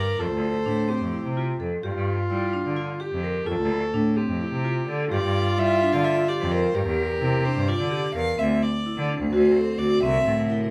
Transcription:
Already playing: cello G2, viola A#4, violin D5
0.19 cello F2, vibraphone F4, viola A4, violin C5
0.31 cello D2
0.66 cello A2, vibraphone D4
0.88 vibraphone C4, viola G4
1.01 cello F2
1.13 vibraphone E4
1.24 cello C3
1.37 vibraphone F4
1.60 cello F2, vibraphone A4
1.82 cello G2, viola F4, vibraphone G4
1.94 cello G2
2.30 cello G3, vibraphone E4
2.53 vibraphone D4
2.65 cello D3
2.77 vibraphone F4
3.00 vibraphone G4, viola G4
3.12 cello F2
3.23 vibraphone A#4
3.46 cello F2, vibraphone F4, viola A4
3.59 cello D2
3.94 cello A2, vibraphone D4
4.17 vibraphone C4, viola G4
4.29 cello F2
4.41 vibraphone E4
4.52 cello C3
4.64 vibraphone F4
4.87 cello D3, vibraphone A4
5.10 cello G2, viola F4, vibraphone G4
5.14 violin D5
5.22 cello G2
5.57 cello G3, vibraphone E4, violin E5
5.82 vibraphone D4
5.92 cello D3, violin F5
6.05 vibraphone F4, violin E5
6.28 vibraphone G4, violin D5
6.40 cello F2
6.51 vibraphone A#4, violin C5
6.74 cello G2, viola G4, vibraphone G4, violin A#4
6.86 cello E2
7.21 cello C3, vibraphone E4
7.45 vibraphone D4, violin C5
7.55 cello G2
7.68 vibraphone F4, violin D5
7.79 cello D3
7.91 vibraphone G4
8.14 cello E2, vibraphone A#4, violin F5
8.38 cello D2, ambient pad D3 C4 F#4, vibraphone C4, violin E5
8.62 violin D5
8.86 vibraphone E4
8.97 cello D3
9.09 vibraphone D4
9.20 cello D2
9.32 cello D2, vibraphone F#4, violin C5
9.55 vibraphone A4
9.78 cello D2, vibraphone F#4, violin D5
10.02 cello C2, ambient pad C3 E3 A#4, vibraphone C4, violin E5
10.25 cello A2
10.50 vibraphone E4

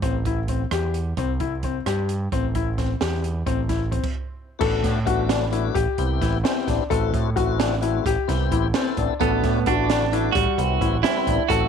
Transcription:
0.02 picked electric bass A1, grand piano C4, kick, closed hi-hat
0.25 grand piano E4, kick, closed hi-hat
0.48 grand piano C4, kick, closed hi-hat
0.71 picked electric bass E2, grand piano G4, cross-stick, closed hi-hat
0.94 closed hi-hat
1.17 picked electric bass C2, grand piano C4, kick, closed hi-hat
1.40 grand piano E4, kick, closed hi-hat
1.63 grand piano C4, kick, closed hi-hat
1.86 picked electric bass G2, grand piano G4, cross-stick, closed hi-hat
2.09 closed hi-hat
2.32 picked electric bass A1, grand piano C4, kick, closed hi-hat
2.55 grand piano E4, kick, closed hi-hat
2.78 grand piano C4, kick, snare, closed hi-hat
3.01 picked electric bass E2, grand piano G4, snare, closed hi-hat
3.24 closed hi-hat
3.46 picked electric bass A1, grand piano C4, kick, closed hi-hat
3.69 grand piano E4, kick, snare, closed hi-hat
3.91 grand piano C4, kick, closed hi-hat
4.03 kick, crash
4.59 picked electric bass A1, tonewheel organ A3 B3 D4 F#4, grand piano A4, kick, crash
4.84 picked electric bass A2, kick, snare, closed hi-hat
5.05 picked electric bass A1, tonewheel organ A3 B3 D4 F#4, grand piano F#4, kick, closed hi-hat
5.29 grand piano D4, snare, closed hi-hat
5.51 tonewheel organ A3 B3 D4 F#4, grand piano E4, closed hi-hat
5.75 picked electric bass A1, grand piano G4, kick, closed hi-hat
5.98 picked electric bass C2, tonewheel organ B3 C4 E4 G4, kick, closed hi-hat
6.21 picked electric bass A1, grand piano E4, kick, snare, closed hi-hat
6.43 tonewheel organ B3 C4 E4 G4, grand piano C4, snare, closed hi-hat
6.68 picked electric bass A1, grand piano D4, kick, snare, closed hi-hat
6.90 picked electric bass A1, tonewheel organ A3 C4 E4 F#4, grand piano A4, kick, closed hi-hat
7.14 picked electric bass A2, kick, closed hi-hat
7.36 picked electric bass A1, tonewheel organ A3 C4 E4 F#4, grand piano F#4, kick, closed hi-hat
7.59 grand piano D4, snare, closed hi-hat
7.81 tonewheel organ A3 C4 E4 F#4, grand piano E4, closed hi-hat
8.06 picked electric bass A1, grand piano G4, kick, closed hi-hat
8.28 picked electric bass C2, tonewheel organ B3 C4 E4 G4, kick, snare, closed hi-hat
8.52 picked electric bass A1, grand piano E4, kick, closed hi-hat
8.74 tonewheel organ B3 C4 E4 A4, grand piano C4, snare, closed hi-hat
8.97 picked electric bass A1, grand piano D4, kick, closed hi-hat
9.19 picked electric bass A1, tonewheel organ A3 B3 D4 F#4, clean electric guitar B3, grand piano A4, kick, closed hi-hat
9.44 picked electric bass A2, kick, snare, closed hi-hat
9.66 picked electric bass A1, tonewheel organ A3 B3 D4 F#4, clean electric guitar D4, grand piano F#4, kick, closed hi-hat
9.90 grand piano D4, snare, closed hi-hat
10.12 tonewheel organ A3 B3 D4 F#4, grand piano E4, closed hi-hat
10.32 picked electric bass A1, grand piano G3, clean electric guitar F#4, kick, closed hi-hat
10.58 picked electric bass C2, tonewheel organ G3 B3 C4 E4, kick, closed hi-hat
10.81 picked electric bass A1, grand piano E4, kick, closed hi-hat
11.03 tonewheel organ G3 B3 C4 E4, grand piano C4, clean electric guitar E4, snare, closed hi-hat
11.27 picked electric bass A1, grand piano D4, kick, closed hi-hat
11.49 picked electric bass A1, tonewheel organ F#3 A3 C4 E4, clean electric guitar F#4, grand piano A4, kick, closed hi-hat

